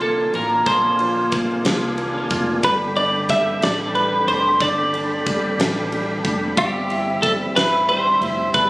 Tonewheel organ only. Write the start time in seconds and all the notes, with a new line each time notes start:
Already playing: A#3 D5 F5 G#5
2.64 A4 G5 B5
6.58 C4 G4 E5
8.54 A5